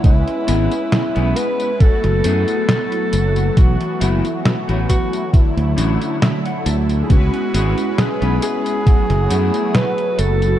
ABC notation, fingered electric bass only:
X:1
M:4/4
L:1/16
Q:"Swing 16ths" 1/4=68
K:F#m
V:1 name="Fingered electric bass" clef=bass
C,, z G,,, z2 B,,, z3 F,,, F,, z3 F,,,2 | B,,, z F,,, z2 A,,, z3 D,, A,,, z3 D,,2 | C,, z G,,, z2 B,,, z3 F,,, F,, z3 F,,,2 |]